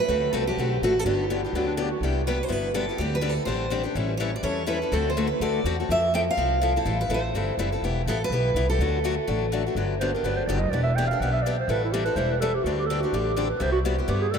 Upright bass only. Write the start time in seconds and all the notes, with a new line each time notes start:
0.08 D2
0.33 C2
0.57 B1
0.81 A1
1.05 G1
1.53 D2
2.00 C2
2.49 G1
2.98 D2
3.47 A1
3.95 A1
4.43 E2
4.92 D2
5.40 D2
5.64 E2
5.89 F2
6.37 C2
6.85 A1
7.09 A1
7.34 G1
7.57 F#1
7.82 E1
8.06 A1
8.30 B1
8.54 C2
8.78 D2
9.28 A1
9.75 G1
10.23 G1
10.47 F#1
10.71 E1
11.20 B1
11.68 A1
12.16 E1
12.64 D2
13.13 A1
13.60 C2
14.08 G2